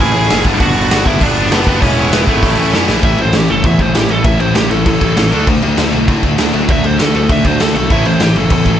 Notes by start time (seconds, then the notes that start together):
0.00 A1 A2 E3 A3 C#4 E4 G#4 G#5
0.15 A1 A2 E3 A3 C#4 E4
0.30 F#1 A2 E3 A3 C#4 E4, snare, open hi-hat
0.45 G1 G2 D3 G3 B3 D4, kick
0.59 G1 G2 D3 G3 B3 D4 F#4 F#5, kick, open hi-hat
0.75 G1 G2 D3 G3 B3 D4
0.91 G1 G2 D3 G3 B3 D4, snare, open hi-hat
1.06 G1 G2 D3 G3 B3 D4 E4 E5, kick
1.21 G1 G2 D3 G3 B3 D4 D5, kick, open hi-hat
1.36 G1 G2 D3 G3 B3 D4
1.51 F#1 G2 D3 G3 B3 D4 B4, snare, open hi-hat
1.66 G2 D3 G3 B3 D4, kick
1.81 E1 E3 G#3 B3 C#4 E4 C#5, kick, open hi-hat
1.97 E3 G#3 B3 E4
2.12 E1 E3 G#3 B3 E4 B4, snare, open hi-hat
2.27 G#1 E3 G#3 A3 B3 E4 A4, kick
2.43 A1 A2 E3 A3 C#4 E4, kick, open hi-hat
2.58 A1 A2 E3 A3 C#4 E4
2.74 F#2 A2 E3 A3 C#4 E4, snare
2.88 A1 A2 E3 A3 C#4 E4, snare
3.03 A1 A2 E3 A3 C#4 E4 E5, kick, crash
3.18 A1 A2 E3 C5, crash
3.33 A1 A2 E3 G4, snare, crash
3.48 F#1 A2 E3 A4, crash
3.64 E2 A2 E3 E5, kick, crash
3.79 A1 A2 E3 C5, kick, crash
3.94 A1 A2 E3 G4, snare, crash
4.09 A1 A2 E3 A4, crash
4.24 A1 A2 E3 A3 C#4 E4 E5, kick, crash
4.40 A1 A2 E3 C5, crash
4.55 A1 A2 E3 G4, snare, crash
4.71 A1 A2 E3 A4, crash
4.86 A1 A2 E3 A4, kick, crash
5.01 A1 A2 E3, kick, crash
5.17 A1 A2 E3, snare, crash
5.32 D2 D3 A3 D4 F#4, crash
5.47 D2 D3 A3, kick, crash
5.62 D2 D3 A3, crash
5.77 D2 D3 A3, snare, crash
5.92 B1 D3 A3, crash
6.08 A2 D3 A3, kick, crash
6.23 D2 D3 A3, kick, crash
6.38 D2 D3 A3, snare, crash
6.53 D2 D3 A3 D4 F#4, crash
6.68 D2 D3 A3 E5, kick, crash
6.84 D2 D3 A3 C5, crash
6.99 D2 D3 A3 A4, snare, crash
7.15 D2 D3 A3 A4, crash
7.29 D2 D3 A3 E5, kick, crash
7.45 D2 D3 A3 C5, kick, crash
7.60 D2 D3 A3 A4, snare, crash
7.75 B1 D3 A3 A4, crash
7.90 A1 A2 E3 A3 C#4 E4 E5, kick, crash
8.05 A1 A2 E3 C5, crash
8.20 A1 A2 E3 G4, snare, crash
8.36 F#1 A2 E3 A4, crash
8.50 E2 A2 E3 A4, kick, crash
8.65 A1 A2 E3, kick, crash